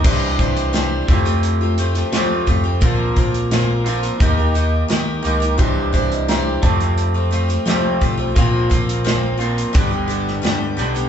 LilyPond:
<<
  \new Staff \with { instrumentName = "Upright piano" } { \time 4/4 \key f \major \tempo 4 = 87 r1 | r1 | <fis' g'>8 c''16 ees''16 bes''8 a''4 r4. | r1 | }
  \new Staff \with { instrumentName = "Twelve-string acoustic guitar" } { \time 4/4 \key f \major <c' e' g' d''>8 <c' e' g' d''>8 <c' e' g' d''>8 <a c' f' g'>16 <a c' f' g'>8 <a c' f' g'>16 <a c' f' g'>16 <a c' f' g'>16 <f, f a c' f' g'>8 <a c' f' g'>16 <a c' f' g'>16 | <bes, bes c' f' bes'>8 <bes c' f' bes'>8 <bes, bes c' f' bes'>8 <bes c' f' bes'>16 <c' f' bes'>16 <ees ees' g' bes'>16 <ees' g' bes'>16 <ees ees' g' bes'>8 <ees ees' g' bes'>8 <ees ees' g' bes'>16 <ees' g' bes'>16 | <c' e' g' d''>8 <c' e' g' d''>8 <c' e' g' d''>8 <g a c' f'>8. <g a c' f'>16 <g a c' f'>16 <g a c' f'>16 <f, c g a c' f'>8 <g a c' f'>16 <g a c' f'>16 | <bes, f bes c' f'>8 <f bes c' f'>8 <bes, f bes c' f'>8 <f bes c' f'>8 <g, d g b d' g'>16 <g b d' g'>16 <g b d' g'>8 <g, d g b d' g'>8 <g b d' g'>16 <g b d' g'>16 | }
  \new Staff \with { instrumentName = "Clean electric guitar" } { \time 4/4 \key f \major <c e g d' g'>4. <f a c' g'>4. <f a c' g'>4 | <bes, f bes c' f'>4. <bes, f bes c' f'>8 <ees bes ees' g'>4. <ees bes ees' g'>8 | <c e g d' g'>4. <f a c' g'>4. <f a c' g'>4 | <bes, f bes c' f'>4. <bes, f bes c' f'>8 <g, d g b d' g'>4. <g, d g b d' g'>8 | }
  \new Staff \with { instrumentName = "Picked electric bass" } { \clef bass \time 4/4 \key f \major c,8 c,4 f,4. f8 f,8 | bes,,8 bes,,4. ees,4 ees8 des,8 | c,8 c,4 f,4. f8 b,,8 | bes,,8 bes,,4. g,,4 g,8 b,,8 | }
  \new DrumStaff \with { instrumentName = "Drums" } \drummode { \time 4/4 <cymc hh bd>8 <hh bd>16 hh16 <hh sn>8 <hh bd>16 hh16 hh8 hh16 <hh sn>16 <hh sn>8 <hh bd>8 | <hh bd>8 <hh bd>16 hh16 <hh sn>8 hh16 hh16 <hh bd>8 hh8 <hh sn>8 hh16 hh16 | <hh bd>8 <hh bd>16 hh16 <hh sn>8 <hh bd>16 hh16 hh8 hh16 hh16 <hh sn>8 <hh bd>8 | <hh bd>8 <hh bd>16 hh16 <hh sn>8 hh16 hh16 <hh bd>8 hh16 sn16 <hh sn>8 hh16 hh16 | }
>>